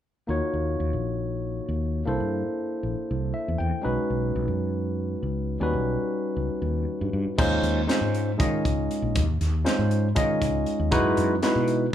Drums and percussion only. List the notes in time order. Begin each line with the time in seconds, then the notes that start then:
7.39 kick, crash
7.64 closed hi-hat
7.89 snare, closed hi-hat
8.15 closed hi-hat
8.40 kick, closed hi-hat
8.65 kick, closed hi-hat
8.91 closed hi-hat
9.15 kick, closed hi-hat
9.41 snare, closed hi-hat
9.66 snare, closed hi-hat
9.91 closed hi-hat
10.16 kick, closed hi-hat
10.42 kick, closed hi-hat
10.66 closed hi-hat
10.92 kick, closed hi-hat
11.17 closed hi-hat
11.43 snare, closed hi-hat
11.68 closed hi-hat